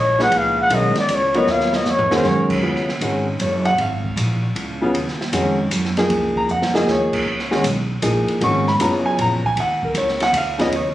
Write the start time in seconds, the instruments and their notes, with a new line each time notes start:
Already playing: upright bass A#1, trumpet C#5
0.19 upright piano A#2 F3 D#4 G#4 B4, trumpet F#5, snare
0.32 upright bass C#2, ride
0.38 trumpet F5
0.61 trumpet F#5
0.70 upright bass B1, upright piano D#3 G#3 C#4 F#4 A#4, hi-hat pedal, ride
0.75 trumpet D#5
0.95 snare, ride
1.00 trumpet D5
1.09 upright bass C#2, hi-hat pedal, ride
1.15 trumpet C#5
1.34 upright piano F#3 B3 F4 A#4 C#5, trumpet D#5, ride
1.47 upright bass D#2, snare
1.52 trumpet F5
1.60 snare
1.73 trumpet D#5, snare
1.85 upright bass F2, snare, hi-hat pedal
1.90 trumpet C#5
1.99 floor tom
2.11 upright piano D#3 G#3 C#4 F#4 A#4, snare
2.15 trumpet C#5
2.23 upright bass F#2, snare
2.50 kick, crash
2.62 upright bass D#2, upright piano C#3 F#3 B3 F4
2.76 snare
2.89 snare
3.01 upright bass G#1, upright piano D#3 G#3 C#4 F#4, hi-hat pedal, ride
3.39 upright bass F#1, upright piano C#5, hi-hat pedal, ride
3.65 upright piano F#5, ride
3.78 upright bass G#1, upright piano F5, ride
4.05 kick
4.16 upright bass A#1, hi-hat pedal, ride
4.55 upright bass C#2, ride
4.81 upright piano C#3 F#3 B3 F4
4.94 upright bass D#2, ride
5.08 snare
5.21 snare
5.32 upright bass F2, upright piano D#3 G#3 C#4 F#4, hi-hat pedal, ride
5.71 upright bass F#2, hi-hat pedal, ride
5.85 snare
5.97 upright piano F3 A#3 D#4 G#4, snare, ride
6.10 upright bass C#2, ride
6.36 upright piano A#5, kick
6.48 upright bass F2, upright piano F#5, hi-hat pedal
6.62 snare
6.74 upright piano F3 A#3 D#4 G#4 D#5, snare
6.87 upright bass D#2, snare
6.91 upright piano C#5
7.13 kick, crash
7.26 upright bass C#2
7.39 snare
7.51 upright piano D#3 G#3 C#4 F#4, snare
7.64 upright bass B1, hi-hat pedal, ride
8.02 upright bass A#1, upright piano F3 A#3 D#4 G#4, hi-hat pedal, ride
8.28 ride
8.41 upright bass G#1, upright piano D#3 G#3 C#4 F#4 C#6, ride
8.67 upright piano B5, snare
8.79 upright bass F#1, upright piano C#3 F#3 B3 F4 A#5, hi-hat pedal, ride
9.06 upright piano G#5
9.18 upright bass A#1, upright piano A#5, ride
9.44 upright piano G#5, kick
9.56 upright bass D#2, ride
9.60 upright piano F#5
9.83 upright piano A#4, kick
9.94 upright bass C#2, upright piano C#5, hi-hat pedal, ride
10.08 snare
10.20 upright piano F#5, snare, ride
10.33 upright bass D2, hi-hat pedal, ride
10.37 upright piano F5
10.58 upright piano C#3 F#3 B3 F4 D#5, snare, ride
10.72 upright bass D#2, ride
10.76 upright piano C#5